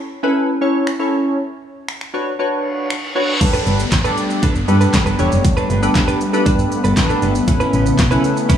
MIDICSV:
0, 0, Header, 1, 9, 480
1, 0, Start_track
1, 0, Tempo, 508475
1, 1300, Time_signature, 4, 2, 24, 8
1, 8096, End_track
2, 0, Start_track
2, 0, Title_t, "Clean electric guitar"
2, 0, Program_c, 0, 27
2, 3335, Note_on_c, 0, 71, 74
2, 3343, Note_on_c, 0, 69, 66
2, 3349, Note_on_c, 0, 62, 62
2, 3445, Note_off_c, 0, 62, 0
2, 3453, Note_off_c, 0, 69, 0
2, 3456, Note_on_c, 0, 62, 66
2, 3459, Note_off_c, 0, 71, 0
2, 3464, Note_on_c, 0, 69, 63
2, 3470, Note_on_c, 0, 71, 67
2, 3566, Note_off_c, 0, 71, 0
2, 3576, Note_off_c, 0, 69, 0
2, 3586, Note_off_c, 0, 62, 0
2, 3817, Note_on_c, 0, 71, 88
2, 3825, Note_on_c, 0, 69, 83
2, 3832, Note_on_c, 0, 62, 72
2, 3928, Note_off_c, 0, 62, 0
2, 3934, Note_off_c, 0, 69, 0
2, 3938, Note_off_c, 0, 71, 0
2, 4177, Note_on_c, 0, 62, 82
2, 4186, Note_on_c, 0, 69, 92
2, 4192, Note_on_c, 0, 71, 91
2, 4287, Note_off_c, 0, 71, 0
2, 4296, Note_off_c, 0, 69, 0
2, 4342, Note_off_c, 0, 62, 0
2, 4537, Note_on_c, 0, 71, 62
2, 4545, Note_on_c, 0, 69, 53
2, 4551, Note_on_c, 0, 62, 54
2, 4646, Note_off_c, 0, 62, 0
2, 4652, Note_off_c, 0, 69, 0
2, 4656, Note_off_c, 0, 71, 0
2, 4776, Note_on_c, 0, 71, 86
2, 4784, Note_on_c, 0, 69, 72
2, 4791, Note_on_c, 0, 62, 61
2, 4885, Note_off_c, 0, 62, 0
2, 4893, Note_off_c, 0, 69, 0
2, 4897, Note_on_c, 0, 62, 63
2, 4899, Note_off_c, 0, 71, 0
2, 4904, Note_on_c, 0, 69, 68
2, 4910, Note_on_c, 0, 71, 72
2, 5007, Note_off_c, 0, 71, 0
2, 5017, Note_off_c, 0, 69, 0
2, 5026, Note_off_c, 0, 62, 0
2, 5256, Note_on_c, 0, 71, 93
2, 5264, Note_on_c, 0, 69, 78
2, 5270, Note_on_c, 0, 62, 67
2, 5366, Note_off_c, 0, 62, 0
2, 5374, Note_off_c, 0, 69, 0
2, 5378, Note_on_c, 0, 62, 67
2, 5381, Note_off_c, 0, 71, 0
2, 5385, Note_on_c, 0, 69, 67
2, 5392, Note_on_c, 0, 71, 69
2, 5488, Note_off_c, 0, 71, 0
2, 5498, Note_off_c, 0, 69, 0
2, 5506, Note_off_c, 0, 62, 0
2, 5737, Note_on_c, 0, 71, 85
2, 5745, Note_on_c, 0, 69, 75
2, 5751, Note_on_c, 0, 62, 69
2, 5846, Note_off_c, 0, 62, 0
2, 5852, Note_off_c, 0, 69, 0
2, 5856, Note_off_c, 0, 71, 0
2, 6096, Note_on_c, 0, 62, 82
2, 6103, Note_on_c, 0, 69, 87
2, 6110, Note_on_c, 0, 71, 90
2, 6206, Note_off_c, 0, 71, 0
2, 6216, Note_off_c, 0, 69, 0
2, 6261, Note_off_c, 0, 62, 0
2, 6456, Note_on_c, 0, 71, 64
2, 6464, Note_on_c, 0, 69, 56
2, 6470, Note_on_c, 0, 62, 49
2, 6565, Note_off_c, 0, 62, 0
2, 6571, Note_off_c, 0, 69, 0
2, 6575, Note_off_c, 0, 71, 0
2, 6696, Note_on_c, 0, 71, 73
2, 6704, Note_on_c, 0, 69, 74
2, 6710, Note_on_c, 0, 62, 63
2, 6804, Note_off_c, 0, 62, 0
2, 6812, Note_off_c, 0, 69, 0
2, 6816, Note_on_c, 0, 62, 74
2, 6818, Note_off_c, 0, 71, 0
2, 6823, Note_on_c, 0, 69, 78
2, 6830, Note_on_c, 0, 71, 72
2, 6925, Note_off_c, 0, 71, 0
2, 6935, Note_off_c, 0, 69, 0
2, 6945, Note_off_c, 0, 62, 0
2, 7176, Note_on_c, 0, 71, 92
2, 7184, Note_on_c, 0, 64, 79
2, 7190, Note_on_c, 0, 61, 68
2, 7284, Note_off_c, 0, 61, 0
2, 7292, Note_off_c, 0, 64, 0
2, 7296, Note_on_c, 0, 61, 68
2, 7299, Note_off_c, 0, 71, 0
2, 7303, Note_on_c, 0, 64, 70
2, 7310, Note_on_c, 0, 71, 79
2, 7406, Note_off_c, 0, 71, 0
2, 7416, Note_off_c, 0, 64, 0
2, 7425, Note_off_c, 0, 61, 0
2, 7655, Note_on_c, 0, 71, 81
2, 7663, Note_on_c, 0, 64, 80
2, 7669, Note_on_c, 0, 61, 72
2, 7765, Note_off_c, 0, 61, 0
2, 7771, Note_off_c, 0, 64, 0
2, 7776, Note_off_c, 0, 71, 0
2, 8015, Note_on_c, 0, 61, 91
2, 8023, Note_on_c, 0, 64, 99
2, 8030, Note_on_c, 0, 71, 104
2, 8096, Note_off_c, 0, 61, 0
2, 8096, Note_off_c, 0, 64, 0
2, 8096, Note_off_c, 0, 71, 0
2, 8096, End_track
3, 0, Start_track
3, 0, Title_t, "Synth keys"
3, 0, Program_c, 1, 88
3, 217, Note_on_c, 1, 61, 98
3, 219, Note_on_c, 1, 64, 91
3, 220, Note_on_c, 1, 69, 89
3, 222, Note_on_c, 1, 71, 108
3, 469, Note_off_c, 1, 61, 0
3, 470, Note_off_c, 1, 64, 0
3, 470, Note_off_c, 1, 69, 0
3, 471, Note_off_c, 1, 71, 0
3, 577, Note_on_c, 1, 61, 89
3, 578, Note_on_c, 1, 64, 79
3, 580, Note_on_c, 1, 69, 80
3, 582, Note_on_c, 1, 73, 100
3, 829, Note_off_c, 1, 61, 0
3, 829, Note_off_c, 1, 64, 0
3, 830, Note_off_c, 1, 69, 0
3, 831, Note_off_c, 1, 73, 0
3, 937, Note_on_c, 1, 61, 87
3, 939, Note_on_c, 1, 64, 76
3, 941, Note_on_c, 1, 69, 75
3, 942, Note_on_c, 1, 73, 92
3, 1299, Note_off_c, 1, 61, 0
3, 1300, Note_off_c, 1, 64, 0
3, 1300, Note_off_c, 1, 69, 0
3, 1301, Note_off_c, 1, 73, 0
3, 2016, Note_on_c, 1, 62, 78
3, 2018, Note_on_c, 1, 66, 75
3, 2020, Note_on_c, 1, 71, 76
3, 2021, Note_on_c, 1, 73, 89
3, 2185, Note_off_c, 1, 62, 0
3, 2186, Note_off_c, 1, 66, 0
3, 2187, Note_off_c, 1, 71, 0
3, 2187, Note_off_c, 1, 73, 0
3, 2256, Note_on_c, 1, 62, 81
3, 2258, Note_on_c, 1, 66, 77
3, 2260, Note_on_c, 1, 71, 78
3, 2261, Note_on_c, 1, 73, 94
3, 2759, Note_off_c, 1, 62, 0
3, 2759, Note_off_c, 1, 66, 0
3, 2760, Note_off_c, 1, 71, 0
3, 2761, Note_off_c, 1, 73, 0
3, 2976, Note_on_c, 1, 62, 93
3, 2978, Note_on_c, 1, 66, 81
3, 2979, Note_on_c, 1, 71, 86
3, 2981, Note_on_c, 1, 73, 106
3, 3145, Note_off_c, 1, 62, 0
3, 3146, Note_off_c, 1, 66, 0
3, 3147, Note_off_c, 1, 71, 0
3, 3147, Note_off_c, 1, 73, 0
3, 3216, Note_on_c, 1, 62, 79
3, 3218, Note_on_c, 1, 67, 71
3, 3219, Note_on_c, 1, 69, 76
3, 3221, Note_on_c, 1, 71, 91
3, 3635, Note_off_c, 1, 62, 0
3, 3636, Note_off_c, 1, 67, 0
3, 3637, Note_off_c, 1, 69, 0
3, 3637, Note_off_c, 1, 71, 0
3, 3817, Note_on_c, 1, 62, 83
3, 3819, Note_on_c, 1, 67, 77
3, 3820, Note_on_c, 1, 69, 79
3, 3822, Note_on_c, 1, 74, 96
3, 4235, Note_off_c, 1, 62, 0
3, 4236, Note_off_c, 1, 67, 0
3, 4237, Note_off_c, 1, 69, 0
3, 4238, Note_off_c, 1, 74, 0
3, 4417, Note_on_c, 1, 62, 94
3, 4418, Note_on_c, 1, 67, 87
3, 4420, Note_on_c, 1, 69, 86
3, 4422, Note_on_c, 1, 71, 99
3, 4752, Note_off_c, 1, 62, 0
3, 4753, Note_off_c, 1, 67, 0
3, 4754, Note_off_c, 1, 69, 0
3, 4755, Note_off_c, 1, 71, 0
3, 4897, Note_on_c, 1, 62, 82
3, 4899, Note_on_c, 1, 67, 76
3, 4900, Note_on_c, 1, 69, 75
3, 4902, Note_on_c, 1, 73, 92
3, 5316, Note_off_c, 1, 62, 0
3, 5316, Note_off_c, 1, 67, 0
3, 5317, Note_off_c, 1, 69, 0
3, 5318, Note_off_c, 1, 73, 0
3, 5497, Note_on_c, 1, 62, 92
3, 5498, Note_on_c, 1, 67, 86
3, 5500, Note_on_c, 1, 69, 84
3, 5502, Note_on_c, 1, 71, 102
3, 5832, Note_off_c, 1, 62, 0
3, 5833, Note_off_c, 1, 67, 0
3, 5834, Note_off_c, 1, 69, 0
3, 5834, Note_off_c, 1, 71, 0
3, 5977, Note_on_c, 1, 62, 103
3, 5979, Note_on_c, 1, 67, 91
3, 5981, Note_on_c, 1, 69, 89
3, 5982, Note_on_c, 1, 71, 114
3, 6396, Note_off_c, 1, 62, 0
3, 6397, Note_off_c, 1, 67, 0
3, 6397, Note_off_c, 1, 69, 0
3, 6398, Note_off_c, 1, 71, 0
3, 6577, Note_on_c, 1, 62, 100
3, 6579, Note_on_c, 1, 67, 86
3, 6581, Note_on_c, 1, 69, 89
3, 6582, Note_on_c, 1, 71, 107
3, 6912, Note_off_c, 1, 62, 0
3, 6913, Note_off_c, 1, 67, 0
3, 6914, Note_off_c, 1, 69, 0
3, 6915, Note_off_c, 1, 71, 0
3, 7056, Note_on_c, 1, 61, 80
3, 7057, Note_on_c, 1, 64, 76
3, 7060, Note_on_c, 1, 69, 74
3, 7061, Note_on_c, 1, 71, 91
3, 7475, Note_off_c, 1, 61, 0
3, 7476, Note_off_c, 1, 64, 0
3, 7477, Note_off_c, 1, 69, 0
3, 7477, Note_off_c, 1, 71, 0
3, 7657, Note_on_c, 1, 61, 89
3, 7659, Note_on_c, 1, 64, 81
3, 7661, Note_on_c, 1, 69, 80
3, 7662, Note_on_c, 1, 71, 103
3, 8076, Note_off_c, 1, 61, 0
3, 8076, Note_off_c, 1, 64, 0
3, 8077, Note_off_c, 1, 69, 0
3, 8078, Note_off_c, 1, 71, 0
3, 8096, End_track
4, 0, Start_track
4, 0, Title_t, "Analog synth pad"
4, 0, Program_c, 2, 89
4, 3217, Note_on_c, 2, 57, 73
4, 3218, Note_on_c, 2, 55, 80
4, 3219, Note_on_c, 2, 59, 87
4, 7022, Note_off_c, 2, 55, 0
4, 7059, Note_on_c, 2, 49, 80
4, 8096, Note_off_c, 2, 49, 0
4, 8096, Note_off_c, 2, 57, 0
4, 8096, Note_off_c, 2, 59, 0
4, 8096, End_track
5, 0, Start_track
5, 0, Title_t, "FM bass"
5, 0, Program_c, 3, 39
5, 3220, Note_on_c, 3, 31, 105
5, 3397, Note_off_c, 3, 31, 0
5, 3460, Note_on_c, 3, 31, 105
5, 3637, Note_off_c, 3, 31, 0
5, 3700, Note_on_c, 3, 33, 96
5, 3877, Note_off_c, 3, 33, 0
5, 4301, Note_on_c, 3, 31, 96
5, 4389, Note_off_c, 3, 31, 0
5, 4421, Note_on_c, 3, 43, 109
5, 4597, Note_off_c, 3, 43, 0
5, 4780, Note_on_c, 3, 31, 99
5, 4869, Note_off_c, 3, 31, 0
5, 4900, Note_on_c, 3, 28, 90
5, 4988, Note_off_c, 3, 28, 0
5, 5021, Note_on_c, 3, 30, 86
5, 5109, Note_off_c, 3, 30, 0
5, 5141, Note_on_c, 3, 31, 108
5, 5317, Note_off_c, 3, 31, 0
5, 5382, Note_on_c, 3, 31, 106
5, 5558, Note_off_c, 3, 31, 0
5, 5621, Note_on_c, 3, 31, 94
5, 5797, Note_off_c, 3, 31, 0
5, 6102, Note_on_c, 3, 43, 101
5, 6278, Note_off_c, 3, 43, 0
5, 6461, Note_on_c, 3, 31, 91
5, 6549, Note_off_c, 3, 31, 0
5, 6580, Note_on_c, 3, 33, 98
5, 6756, Note_off_c, 3, 33, 0
5, 6820, Note_on_c, 3, 31, 92
5, 6997, Note_off_c, 3, 31, 0
5, 7060, Note_on_c, 3, 33, 104
5, 7236, Note_off_c, 3, 33, 0
5, 7301, Note_on_c, 3, 33, 110
5, 7477, Note_off_c, 3, 33, 0
5, 7540, Note_on_c, 3, 35, 99
5, 7717, Note_off_c, 3, 35, 0
5, 8096, End_track
6, 0, Start_track
6, 0, Title_t, "Downlifter"
6, 0, Program_c, 4, 103
6, 3220, Note_on_c, 4, 60, 83
6, 7060, Note_off_c, 4, 60, 0
6, 8096, End_track
7, 0, Start_track
7, 0, Title_t, "Reverse cymbal"
7, 0, Program_c, 5, 119
7, 2260, Note_on_c, 5, 60, 82
7, 3220, Note_off_c, 5, 60, 0
7, 8096, End_track
8, 0, Start_track
8, 0, Title_t, "Muted clean electric guitar strokes"
8, 3217, Note_on_c, 9, 29, 35
8, 3312, Note_off_c, 9, 29, 0
8, 3577, Note_on_c, 9, 29, 44
8, 3672, Note_off_c, 9, 29, 0
8, 3698, Note_on_c, 9, 29, 47
8, 3792, Note_off_c, 9, 29, 0
8, 3939, Note_on_c, 9, 29, 46
8, 4034, Note_off_c, 9, 29, 0
8, 4058, Note_on_c, 9, 29, 38
8, 4153, Note_off_c, 9, 29, 0
8, 4298, Note_on_c, 9, 29, 47
8, 4392, Note_off_c, 9, 29, 0
8, 4419, Note_on_c, 9, 29, 43
8, 4513, Note_off_c, 9, 29, 0
8, 5018, Note_on_c, 9, 29, 48
8, 5113, Note_off_c, 9, 29, 0
8, 5138, Note_on_c, 9, 29, 42
8, 5232, Note_off_c, 9, 29, 0
8, 5499, Note_on_c, 9, 29, 41
8, 5593, Note_off_c, 9, 29, 0
8, 5619, Note_on_c, 9, 29, 49
8, 5714, Note_off_c, 9, 29, 0
8, 5857, Note_on_c, 9, 29, 41
8, 5952, Note_off_c, 9, 29, 0
8, 5977, Note_on_c, 9, 29, 45
8, 6072, Note_off_c, 9, 29, 0
8, 6217, Note_on_c, 9, 29, 44
8, 6312, Note_off_c, 9, 29, 0
8, 6337, Note_on_c, 9, 29, 41
8, 6431, Note_off_c, 9, 29, 0
8, 6576, Note_on_c, 9, 29, 36
8, 6671, Note_off_c, 9, 29, 0
8, 6937, Note_on_c, 9, 29, 55
8, 7031, Note_off_c, 9, 29, 0
8, 7057, Note_on_c, 9, 29, 38
8, 7152, Note_off_c, 9, 29, 0
8, 7417, Note_on_c, 9, 29, 53
8, 7511, Note_off_c, 9, 29, 0
8, 7538, Note_on_c, 9, 29, 44
8, 7632, Note_off_c, 9, 29, 0
8, 7777, Note_on_c, 9, 29, 36
8, 7871, Note_off_c, 9, 29, 0
8, 7898, Note_on_c, 9, 29, 57
8, 7992, Note_off_c, 9, 29, 0
8, 8096, End_track
9, 0, Start_track
9, 0, Title_t, "Drums"
9, 823, Note_on_c, 9, 26, 108
9, 917, Note_off_c, 9, 26, 0
9, 1779, Note_on_c, 9, 26, 99
9, 1874, Note_off_c, 9, 26, 0
9, 1900, Note_on_c, 9, 26, 60
9, 1994, Note_off_c, 9, 26, 0
9, 2742, Note_on_c, 9, 26, 110
9, 2836, Note_off_c, 9, 26, 0
9, 3219, Note_on_c, 9, 49, 90
9, 3220, Note_on_c, 9, 36, 103
9, 3220, Note_on_c, 9, 42, 73
9, 3220, Note_on_c, 9, 82, 71
9, 3314, Note_off_c, 9, 36, 0
9, 3314, Note_off_c, 9, 42, 0
9, 3314, Note_off_c, 9, 49, 0
9, 3314, Note_off_c, 9, 82, 0
9, 3340, Note_on_c, 9, 82, 57
9, 3434, Note_off_c, 9, 82, 0
9, 3461, Note_on_c, 9, 42, 45
9, 3461, Note_on_c, 9, 82, 44
9, 3555, Note_off_c, 9, 42, 0
9, 3555, Note_off_c, 9, 82, 0
9, 3582, Note_on_c, 9, 82, 79
9, 3677, Note_off_c, 9, 82, 0
9, 3698, Note_on_c, 9, 42, 76
9, 3698, Note_on_c, 9, 82, 75
9, 3699, Note_on_c, 9, 39, 109
9, 3701, Note_on_c, 9, 36, 117
9, 3702, Note_on_c, 9, 38, 83
9, 3792, Note_off_c, 9, 42, 0
9, 3792, Note_off_c, 9, 82, 0
9, 3793, Note_off_c, 9, 39, 0
9, 3795, Note_off_c, 9, 36, 0
9, 3796, Note_off_c, 9, 38, 0
9, 3821, Note_on_c, 9, 82, 56
9, 3915, Note_off_c, 9, 82, 0
9, 3940, Note_on_c, 9, 42, 52
9, 3940, Note_on_c, 9, 82, 53
9, 4035, Note_off_c, 9, 42, 0
9, 4035, Note_off_c, 9, 82, 0
9, 4061, Note_on_c, 9, 82, 67
9, 4155, Note_off_c, 9, 82, 0
9, 4180, Note_on_c, 9, 42, 75
9, 4180, Note_on_c, 9, 82, 76
9, 4181, Note_on_c, 9, 36, 118
9, 4274, Note_off_c, 9, 42, 0
9, 4274, Note_off_c, 9, 82, 0
9, 4275, Note_off_c, 9, 36, 0
9, 4299, Note_on_c, 9, 82, 58
9, 4393, Note_off_c, 9, 82, 0
9, 4421, Note_on_c, 9, 42, 51
9, 4421, Note_on_c, 9, 82, 53
9, 4515, Note_off_c, 9, 42, 0
9, 4515, Note_off_c, 9, 82, 0
9, 4540, Note_on_c, 9, 82, 72
9, 4634, Note_off_c, 9, 82, 0
9, 4659, Note_on_c, 9, 42, 81
9, 4659, Note_on_c, 9, 82, 80
9, 4660, Note_on_c, 9, 36, 106
9, 4663, Note_on_c, 9, 39, 113
9, 4666, Note_on_c, 9, 38, 91
9, 4753, Note_off_c, 9, 42, 0
9, 4753, Note_off_c, 9, 82, 0
9, 4755, Note_off_c, 9, 36, 0
9, 4757, Note_off_c, 9, 39, 0
9, 4760, Note_off_c, 9, 38, 0
9, 4781, Note_on_c, 9, 82, 51
9, 4876, Note_off_c, 9, 82, 0
9, 4898, Note_on_c, 9, 42, 51
9, 4898, Note_on_c, 9, 82, 49
9, 4992, Note_off_c, 9, 42, 0
9, 4992, Note_off_c, 9, 82, 0
9, 5021, Note_on_c, 9, 82, 70
9, 5115, Note_off_c, 9, 82, 0
9, 5141, Note_on_c, 9, 36, 108
9, 5141, Note_on_c, 9, 42, 76
9, 5141, Note_on_c, 9, 82, 72
9, 5235, Note_off_c, 9, 36, 0
9, 5236, Note_off_c, 9, 42, 0
9, 5236, Note_off_c, 9, 82, 0
9, 5260, Note_on_c, 9, 82, 58
9, 5354, Note_off_c, 9, 82, 0
9, 5381, Note_on_c, 9, 42, 44
9, 5381, Note_on_c, 9, 82, 45
9, 5475, Note_off_c, 9, 42, 0
9, 5475, Note_off_c, 9, 82, 0
9, 5502, Note_on_c, 9, 82, 80
9, 5596, Note_off_c, 9, 82, 0
9, 5618, Note_on_c, 9, 42, 72
9, 5618, Note_on_c, 9, 82, 73
9, 5620, Note_on_c, 9, 39, 103
9, 5621, Note_on_c, 9, 36, 114
9, 5623, Note_on_c, 9, 38, 85
9, 5713, Note_off_c, 9, 42, 0
9, 5713, Note_off_c, 9, 82, 0
9, 5714, Note_off_c, 9, 39, 0
9, 5716, Note_off_c, 9, 36, 0
9, 5717, Note_off_c, 9, 38, 0
9, 5741, Note_on_c, 9, 82, 58
9, 5836, Note_off_c, 9, 82, 0
9, 5861, Note_on_c, 9, 42, 54
9, 5861, Note_on_c, 9, 82, 55
9, 5956, Note_off_c, 9, 42, 0
9, 5956, Note_off_c, 9, 82, 0
9, 5982, Note_on_c, 9, 82, 67
9, 6077, Note_off_c, 9, 82, 0
9, 6100, Note_on_c, 9, 42, 78
9, 6100, Note_on_c, 9, 82, 74
9, 6101, Note_on_c, 9, 36, 121
9, 6195, Note_off_c, 9, 42, 0
9, 6195, Note_off_c, 9, 82, 0
9, 6196, Note_off_c, 9, 36, 0
9, 6220, Note_on_c, 9, 82, 59
9, 6314, Note_off_c, 9, 82, 0
9, 6341, Note_on_c, 9, 42, 54
9, 6341, Note_on_c, 9, 82, 55
9, 6435, Note_off_c, 9, 42, 0
9, 6435, Note_off_c, 9, 82, 0
9, 6460, Note_on_c, 9, 82, 77
9, 6554, Note_off_c, 9, 82, 0
9, 6577, Note_on_c, 9, 42, 82
9, 6577, Note_on_c, 9, 82, 81
9, 6580, Note_on_c, 9, 36, 107
9, 6581, Note_on_c, 9, 39, 116
9, 6584, Note_on_c, 9, 38, 93
9, 6672, Note_off_c, 9, 42, 0
9, 6672, Note_off_c, 9, 82, 0
9, 6674, Note_off_c, 9, 36, 0
9, 6676, Note_off_c, 9, 39, 0
9, 6679, Note_off_c, 9, 38, 0
9, 6701, Note_on_c, 9, 82, 50
9, 6796, Note_off_c, 9, 82, 0
9, 6818, Note_on_c, 9, 42, 50
9, 6818, Note_on_c, 9, 82, 49
9, 6912, Note_off_c, 9, 42, 0
9, 6912, Note_off_c, 9, 82, 0
9, 6939, Note_on_c, 9, 82, 70
9, 7033, Note_off_c, 9, 82, 0
9, 7059, Note_on_c, 9, 42, 74
9, 7059, Note_on_c, 9, 82, 73
9, 7060, Note_on_c, 9, 36, 108
9, 7153, Note_off_c, 9, 42, 0
9, 7153, Note_off_c, 9, 82, 0
9, 7154, Note_off_c, 9, 36, 0
9, 7179, Note_on_c, 9, 82, 58
9, 7273, Note_off_c, 9, 82, 0
9, 7300, Note_on_c, 9, 42, 46
9, 7300, Note_on_c, 9, 82, 47
9, 7394, Note_off_c, 9, 42, 0
9, 7394, Note_off_c, 9, 82, 0
9, 7421, Note_on_c, 9, 82, 79
9, 7515, Note_off_c, 9, 82, 0
9, 7538, Note_on_c, 9, 42, 71
9, 7538, Note_on_c, 9, 82, 74
9, 7539, Note_on_c, 9, 39, 105
9, 7541, Note_on_c, 9, 36, 114
9, 7542, Note_on_c, 9, 38, 88
9, 7632, Note_off_c, 9, 42, 0
9, 7632, Note_off_c, 9, 82, 0
9, 7634, Note_off_c, 9, 39, 0
9, 7635, Note_off_c, 9, 36, 0
9, 7637, Note_off_c, 9, 38, 0
9, 7660, Note_on_c, 9, 82, 55
9, 7754, Note_off_c, 9, 82, 0
9, 7780, Note_on_c, 9, 42, 53
9, 7780, Note_on_c, 9, 82, 54
9, 7875, Note_off_c, 9, 42, 0
9, 7875, Note_off_c, 9, 82, 0
9, 7901, Note_on_c, 9, 82, 68
9, 7995, Note_off_c, 9, 82, 0
9, 8019, Note_on_c, 9, 42, 76
9, 8019, Note_on_c, 9, 82, 78
9, 8021, Note_on_c, 9, 36, 119
9, 8096, Note_off_c, 9, 36, 0
9, 8096, Note_off_c, 9, 42, 0
9, 8096, Note_off_c, 9, 82, 0
9, 8096, End_track
0, 0, End_of_file